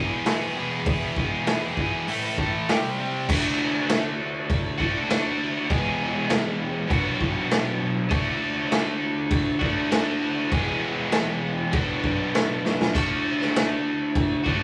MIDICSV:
0, 0, Header, 1, 3, 480
1, 0, Start_track
1, 0, Tempo, 603622
1, 696, Time_signature, 4, 2, 24, 8
1, 11635, End_track
2, 0, Start_track
2, 0, Title_t, "Overdriven electric guitar"
2, 0, Program_c, 0, 29
2, 0, Note_on_c, 0, 40, 91
2, 0, Note_on_c, 0, 47, 93
2, 0, Note_on_c, 0, 52, 93
2, 0, Note_on_c, 0, 59, 106
2, 0, Note_on_c, 0, 64, 110
2, 0, Note_on_c, 0, 68, 103
2, 208, Note_off_c, 0, 40, 0
2, 212, Note_off_c, 0, 47, 0
2, 217, Note_off_c, 0, 52, 0
2, 218, Note_on_c, 0, 40, 96
2, 221, Note_on_c, 0, 47, 106
2, 223, Note_off_c, 0, 59, 0
2, 226, Note_off_c, 0, 64, 0
2, 227, Note_on_c, 0, 52, 99
2, 233, Note_on_c, 0, 59, 94
2, 235, Note_off_c, 0, 68, 0
2, 236, Note_on_c, 0, 64, 103
2, 245, Note_on_c, 0, 68, 99
2, 432, Note_off_c, 0, 40, 0
2, 441, Note_off_c, 0, 47, 0
2, 441, Note_on_c, 0, 40, 91
2, 445, Note_off_c, 0, 52, 0
2, 450, Note_off_c, 0, 59, 0
2, 451, Note_on_c, 0, 47, 91
2, 453, Note_off_c, 0, 64, 0
2, 454, Note_off_c, 0, 68, 0
2, 454, Note_on_c, 0, 52, 87
2, 459, Note_on_c, 0, 59, 102
2, 462, Note_on_c, 0, 64, 101
2, 464, Note_on_c, 0, 68, 100
2, 673, Note_off_c, 0, 40, 0
2, 680, Note_off_c, 0, 47, 0
2, 683, Note_on_c, 0, 40, 95
2, 688, Note_off_c, 0, 52, 0
2, 689, Note_on_c, 0, 47, 87
2, 690, Note_off_c, 0, 59, 0
2, 694, Note_off_c, 0, 64, 0
2, 697, Note_on_c, 0, 52, 100
2, 700, Note_on_c, 0, 59, 103
2, 702, Note_off_c, 0, 68, 0
2, 703, Note_on_c, 0, 64, 108
2, 712, Note_on_c, 0, 68, 99
2, 911, Note_off_c, 0, 40, 0
2, 918, Note_off_c, 0, 47, 0
2, 921, Note_on_c, 0, 40, 89
2, 924, Note_off_c, 0, 52, 0
2, 927, Note_off_c, 0, 59, 0
2, 927, Note_on_c, 0, 47, 95
2, 934, Note_off_c, 0, 64, 0
2, 934, Note_on_c, 0, 52, 85
2, 937, Note_on_c, 0, 59, 88
2, 939, Note_off_c, 0, 68, 0
2, 944, Note_on_c, 0, 64, 93
2, 948, Note_on_c, 0, 68, 98
2, 1161, Note_off_c, 0, 40, 0
2, 1166, Note_off_c, 0, 47, 0
2, 1169, Note_off_c, 0, 52, 0
2, 1170, Note_on_c, 0, 40, 92
2, 1175, Note_off_c, 0, 59, 0
2, 1175, Note_on_c, 0, 47, 86
2, 1177, Note_off_c, 0, 64, 0
2, 1179, Note_on_c, 0, 52, 88
2, 1184, Note_on_c, 0, 59, 92
2, 1187, Note_on_c, 0, 64, 94
2, 1189, Note_off_c, 0, 68, 0
2, 1198, Note_on_c, 0, 68, 103
2, 1404, Note_off_c, 0, 40, 0
2, 1414, Note_on_c, 0, 40, 100
2, 1415, Note_off_c, 0, 47, 0
2, 1418, Note_off_c, 0, 52, 0
2, 1424, Note_on_c, 0, 47, 102
2, 1425, Note_off_c, 0, 59, 0
2, 1428, Note_off_c, 0, 64, 0
2, 1428, Note_on_c, 0, 52, 96
2, 1434, Note_off_c, 0, 68, 0
2, 1435, Note_on_c, 0, 59, 105
2, 1438, Note_on_c, 0, 64, 115
2, 1444, Note_on_c, 0, 68, 114
2, 1641, Note_off_c, 0, 40, 0
2, 1643, Note_off_c, 0, 47, 0
2, 1646, Note_on_c, 0, 45, 86
2, 1648, Note_off_c, 0, 52, 0
2, 1652, Note_off_c, 0, 59, 0
2, 1653, Note_off_c, 0, 64, 0
2, 1656, Note_off_c, 0, 68, 0
2, 1657, Note_on_c, 0, 52, 105
2, 1662, Note_on_c, 0, 57, 100
2, 1666, Note_on_c, 0, 64, 109
2, 1670, Note_on_c, 0, 69, 103
2, 1882, Note_off_c, 0, 45, 0
2, 1887, Note_off_c, 0, 52, 0
2, 1892, Note_on_c, 0, 45, 104
2, 1895, Note_off_c, 0, 57, 0
2, 1897, Note_on_c, 0, 52, 93
2, 1898, Note_off_c, 0, 64, 0
2, 1903, Note_off_c, 0, 69, 0
2, 1905, Note_on_c, 0, 57, 104
2, 1908, Note_on_c, 0, 64, 107
2, 1913, Note_on_c, 0, 69, 107
2, 2120, Note_off_c, 0, 45, 0
2, 2123, Note_off_c, 0, 52, 0
2, 2127, Note_off_c, 0, 57, 0
2, 2128, Note_off_c, 0, 64, 0
2, 2131, Note_off_c, 0, 69, 0
2, 2133, Note_on_c, 0, 48, 98
2, 2142, Note_on_c, 0, 55, 107
2, 2150, Note_on_c, 0, 60, 116
2, 2153, Note_on_c, 0, 67, 108
2, 2366, Note_off_c, 0, 48, 0
2, 2376, Note_off_c, 0, 55, 0
2, 2376, Note_on_c, 0, 48, 89
2, 2382, Note_off_c, 0, 60, 0
2, 2384, Note_off_c, 0, 67, 0
2, 2386, Note_on_c, 0, 55, 88
2, 2391, Note_on_c, 0, 60, 94
2, 2393, Note_on_c, 0, 67, 105
2, 2602, Note_off_c, 0, 48, 0
2, 2605, Note_off_c, 0, 55, 0
2, 2608, Note_on_c, 0, 50, 100
2, 2610, Note_off_c, 0, 60, 0
2, 2611, Note_off_c, 0, 67, 0
2, 2625, Note_on_c, 0, 57, 91
2, 2630, Note_on_c, 0, 62, 91
2, 2640, Note_on_c, 0, 66, 94
2, 3789, Note_off_c, 0, 66, 0
2, 3796, Note_off_c, 0, 50, 0
2, 3799, Note_on_c, 0, 66, 97
2, 3805, Note_off_c, 0, 57, 0
2, 3807, Note_off_c, 0, 62, 0
2, 3818, Note_on_c, 0, 62, 92
2, 3826, Note_on_c, 0, 57, 82
2, 3835, Note_on_c, 0, 50, 74
2, 4032, Note_off_c, 0, 66, 0
2, 4039, Note_off_c, 0, 50, 0
2, 4042, Note_off_c, 0, 62, 0
2, 4046, Note_off_c, 0, 57, 0
2, 4048, Note_on_c, 0, 50, 89
2, 4058, Note_on_c, 0, 57, 86
2, 4074, Note_on_c, 0, 62, 92
2, 4085, Note_on_c, 0, 66, 104
2, 4516, Note_off_c, 0, 50, 0
2, 4521, Note_off_c, 0, 57, 0
2, 4526, Note_on_c, 0, 40, 93
2, 4529, Note_off_c, 0, 62, 0
2, 4534, Note_off_c, 0, 66, 0
2, 4534, Note_on_c, 0, 47, 96
2, 4534, Note_on_c, 0, 52, 91
2, 4544, Note_on_c, 0, 56, 98
2, 4551, Note_on_c, 0, 59, 97
2, 4559, Note_on_c, 0, 68, 110
2, 5460, Note_off_c, 0, 47, 0
2, 5469, Note_on_c, 0, 47, 94
2, 5473, Note_off_c, 0, 40, 0
2, 5478, Note_off_c, 0, 52, 0
2, 5481, Note_off_c, 0, 59, 0
2, 5483, Note_off_c, 0, 56, 0
2, 5487, Note_on_c, 0, 54, 91
2, 5490, Note_off_c, 0, 68, 0
2, 5490, Note_on_c, 0, 59, 92
2, 5501, Note_on_c, 0, 62, 95
2, 5508, Note_on_c, 0, 66, 96
2, 6424, Note_off_c, 0, 47, 0
2, 6430, Note_off_c, 0, 54, 0
2, 6433, Note_on_c, 0, 50, 99
2, 6435, Note_off_c, 0, 59, 0
2, 6440, Note_off_c, 0, 62, 0
2, 6444, Note_off_c, 0, 66, 0
2, 6447, Note_on_c, 0, 57, 100
2, 6456, Note_on_c, 0, 62, 105
2, 6472, Note_on_c, 0, 66, 101
2, 7617, Note_off_c, 0, 66, 0
2, 7626, Note_off_c, 0, 50, 0
2, 7627, Note_on_c, 0, 66, 85
2, 7630, Note_off_c, 0, 62, 0
2, 7633, Note_off_c, 0, 57, 0
2, 7640, Note_on_c, 0, 62, 82
2, 7650, Note_on_c, 0, 57, 81
2, 7662, Note_on_c, 0, 50, 80
2, 7850, Note_off_c, 0, 50, 0
2, 7859, Note_on_c, 0, 50, 78
2, 7863, Note_off_c, 0, 66, 0
2, 7867, Note_off_c, 0, 57, 0
2, 7870, Note_off_c, 0, 62, 0
2, 7876, Note_on_c, 0, 57, 100
2, 7887, Note_on_c, 0, 62, 91
2, 7896, Note_on_c, 0, 66, 104
2, 8339, Note_off_c, 0, 50, 0
2, 8348, Note_off_c, 0, 57, 0
2, 8353, Note_off_c, 0, 62, 0
2, 8354, Note_on_c, 0, 40, 101
2, 8358, Note_off_c, 0, 66, 0
2, 8366, Note_on_c, 0, 47, 90
2, 8370, Note_on_c, 0, 52, 97
2, 8374, Note_on_c, 0, 56, 101
2, 8382, Note_on_c, 0, 59, 109
2, 8387, Note_on_c, 0, 68, 112
2, 9306, Note_off_c, 0, 47, 0
2, 9307, Note_off_c, 0, 40, 0
2, 9315, Note_off_c, 0, 52, 0
2, 9316, Note_on_c, 0, 47, 91
2, 9317, Note_off_c, 0, 56, 0
2, 9321, Note_off_c, 0, 59, 0
2, 9324, Note_off_c, 0, 68, 0
2, 9326, Note_on_c, 0, 54, 87
2, 9334, Note_on_c, 0, 59, 98
2, 9346, Note_on_c, 0, 62, 104
2, 9351, Note_on_c, 0, 66, 103
2, 10269, Note_off_c, 0, 47, 0
2, 10274, Note_off_c, 0, 54, 0
2, 10278, Note_off_c, 0, 59, 0
2, 10284, Note_off_c, 0, 62, 0
2, 10287, Note_off_c, 0, 66, 0
2, 10289, Note_on_c, 0, 50, 89
2, 10305, Note_on_c, 0, 57, 102
2, 10314, Note_on_c, 0, 62, 91
2, 10327, Note_on_c, 0, 66, 104
2, 11477, Note_off_c, 0, 66, 0
2, 11478, Note_off_c, 0, 50, 0
2, 11485, Note_off_c, 0, 57, 0
2, 11486, Note_on_c, 0, 66, 90
2, 11490, Note_off_c, 0, 62, 0
2, 11499, Note_on_c, 0, 62, 85
2, 11509, Note_on_c, 0, 57, 71
2, 11520, Note_on_c, 0, 50, 75
2, 11635, Note_off_c, 0, 50, 0
2, 11635, Note_off_c, 0, 57, 0
2, 11635, Note_off_c, 0, 62, 0
2, 11635, Note_off_c, 0, 66, 0
2, 11635, End_track
3, 0, Start_track
3, 0, Title_t, "Drums"
3, 203, Note_on_c, 9, 46, 63
3, 208, Note_on_c, 9, 38, 107
3, 282, Note_off_c, 9, 46, 0
3, 287, Note_off_c, 9, 38, 0
3, 682, Note_on_c, 9, 46, 60
3, 686, Note_on_c, 9, 36, 123
3, 762, Note_off_c, 9, 46, 0
3, 765, Note_off_c, 9, 36, 0
3, 926, Note_on_c, 9, 36, 101
3, 1005, Note_off_c, 9, 36, 0
3, 1167, Note_on_c, 9, 46, 59
3, 1171, Note_on_c, 9, 38, 116
3, 1246, Note_off_c, 9, 46, 0
3, 1251, Note_off_c, 9, 38, 0
3, 1408, Note_on_c, 9, 36, 85
3, 1487, Note_off_c, 9, 36, 0
3, 1652, Note_on_c, 9, 46, 61
3, 1732, Note_off_c, 9, 46, 0
3, 1891, Note_on_c, 9, 36, 86
3, 1970, Note_off_c, 9, 36, 0
3, 2138, Note_on_c, 9, 46, 63
3, 2142, Note_on_c, 9, 38, 112
3, 2217, Note_off_c, 9, 46, 0
3, 2222, Note_off_c, 9, 38, 0
3, 2616, Note_on_c, 9, 36, 127
3, 2619, Note_on_c, 9, 49, 127
3, 2619, Note_on_c, 9, 57, 75
3, 2695, Note_off_c, 9, 36, 0
3, 2699, Note_off_c, 9, 49, 0
3, 2699, Note_off_c, 9, 57, 0
3, 3095, Note_on_c, 9, 57, 73
3, 3099, Note_on_c, 9, 38, 123
3, 3174, Note_off_c, 9, 57, 0
3, 3179, Note_off_c, 9, 38, 0
3, 3576, Note_on_c, 9, 36, 127
3, 3580, Note_on_c, 9, 57, 72
3, 3656, Note_off_c, 9, 36, 0
3, 3660, Note_off_c, 9, 57, 0
3, 3816, Note_on_c, 9, 36, 88
3, 3896, Note_off_c, 9, 36, 0
3, 4056, Note_on_c, 9, 57, 68
3, 4061, Note_on_c, 9, 38, 112
3, 4136, Note_off_c, 9, 57, 0
3, 4141, Note_off_c, 9, 38, 0
3, 4534, Note_on_c, 9, 36, 123
3, 4539, Note_on_c, 9, 57, 66
3, 4614, Note_off_c, 9, 36, 0
3, 4619, Note_off_c, 9, 57, 0
3, 5008, Note_on_c, 9, 57, 65
3, 5013, Note_on_c, 9, 38, 122
3, 5087, Note_off_c, 9, 57, 0
3, 5092, Note_off_c, 9, 38, 0
3, 5489, Note_on_c, 9, 36, 114
3, 5494, Note_on_c, 9, 57, 69
3, 5569, Note_off_c, 9, 36, 0
3, 5573, Note_off_c, 9, 57, 0
3, 5730, Note_on_c, 9, 36, 89
3, 5809, Note_off_c, 9, 36, 0
3, 5972, Note_on_c, 9, 57, 69
3, 5977, Note_on_c, 9, 38, 126
3, 6052, Note_off_c, 9, 57, 0
3, 6057, Note_off_c, 9, 38, 0
3, 6448, Note_on_c, 9, 36, 126
3, 6453, Note_on_c, 9, 57, 68
3, 6528, Note_off_c, 9, 36, 0
3, 6532, Note_off_c, 9, 57, 0
3, 6930, Note_on_c, 9, 57, 74
3, 6934, Note_on_c, 9, 38, 120
3, 7009, Note_off_c, 9, 57, 0
3, 7014, Note_off_c, 9, 38, 0
3, 7401, Note_on_c, 9, 57, 76
3, 7402, Note_on_c, 9, 36, 126
3, 7480, Note_off_c, 9, 57, 0
3, 7481, Note_off_c, 9, 36, 0
3, 7643, Note_on_c, 9, 36, 89
3, 7723, Note_off_c, 9, 36, 0
3, 7884, Note_on_c, 9, 57, 74
3, 7889, Note_on_c, 9, 38, 120
3, 7964, Note_off_c, 9, 57, 0
3, 7969, Note_off_c, 9, 38, 0
3, 8364, Note_on_c, 9, 36, 123
3, 8365, Note_on_c, 9, 57, 74
3, 8443, Note_off_c, 9, 36, 0
3, 8445, Note_off_c, 9, 57, 0
3, 8841, Note_on_c, 9, 57, 70
3, 8846, Note_on_c, 9, 38, 119
3, 8921, Note_off_c, 9, 57, 0
3, 8925, Note_off_c, 9, 38, 0
3, 9324, Note_on_c, 9, 57, 66
3, 9329, Note_on_c, 9, 36, 115
3, 9403, Note_off_c, 9, 57, 0
3, 9408, Note_off_c, 9, 36, 0
3, 9571, Note_on_c, 9, 36, 93
3, 9651, Note_off_c, 9, 36, 0
3, 9817, Note_on_c, 9, 57, 68
3, 9822, Note_on_c, 9, 38, 122
3, 9897, Note_off_c, 9, 57, 0
3, 9902, Note_off_c, 9, 38, 0
3, 10061, Note_on_c, 9, 38, 73
3, 10141, Note_off_c, 9, 38, 0
3, 10187, Note_on_c, 9, 38, 105
3, 10266, Note_off_c, 9, 38, 0
3, 10297, Note_on_c, 9, 36, 119
3, 10300, Note_on_c, 9, 55, 88
3, 10300, Note_on_c, 9, 57, 67
3, 10377, Note_off_c, 9, 36, 0
3, 10380, Note_off_c, 9, 55, 0
3, 10380, Note_off_c, 9, 57, 0
3, 10663, Note_on_c, 9, 38, 33
3, 10742, Note_off_c, 9, 38, 0
3, 10782, Note_on_c, 9, 57, 70
3, 10787, Note_on_c, 9, 38, 127
3, 10862, Note_off_c, 9, 57, 0
3, 10866, Note_off_c, 9, 38, 0
3, 11256, Note_on_c, 9, 36, 120
3, 11258, Note_on_c, 9, 57, 77
3, 11335, Note_off_c, 9, 36, 0
3, 11338, Note_off_c, 9, 57, 0
3, 11498, Note_on_c, 9, 36, 88
3, 11577, Note_off_c, 9, 36, 0
3, 11635, End_track
0, 0, End_of_file